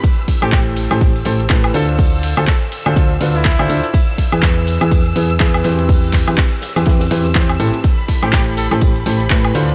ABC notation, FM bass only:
X:1
M:4/4
L:1/16
Q:"Swing 16ths" 1/4=123
K:Am
V:1 name="FM bass" clef=bass
z3 A,,,4 A,,,3 A,,,2 A,,,2 D,,2- | D,,3 D,, z3 D,, D,,2 D,,3 D,, D,, z | z3 E,,4 E,,3 E,,2 E,,2 E,,2- | E,,3 E,, z3 E,, E,,2 E,,2 E,,2 A,,, z |
z3 A,,,4 A,,,3 A,,,2 A,,2 D,,2 |]